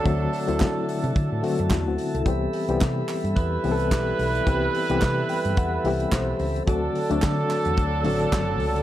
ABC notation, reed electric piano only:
X:1
M:4/4
L:1/16
Q:"Swing 16ths" 1/4=109
K:Dmix
V:1 name="Reed electric piano"
z12 [B,E] [CF]2 [EA]- | [EA] z12 z3 | z6 g2 f2 e2 c4 | z16 |]
V:2 name="Reed electric piano"
[D,F,A,CF]2 z [D,F,A,CE]4- [D,F,A,CE] z2 [D,F,A,CF]4 z2 | [E,G,B,CG]2 z [E,G,B,CG]4- [E,G,B,CG] z2 [E,G,B,CGA]4 z2 | [E,G,B,CG]2 z [E,G,B,CG]4- [E,G,B,CG] z2 [E,G,B,CG]4 z2 | [D,F,A,CF]2 z [D,F,A,CD]4- [D,F,A,CD] z2 [D,F,A,CF]4 z2 |]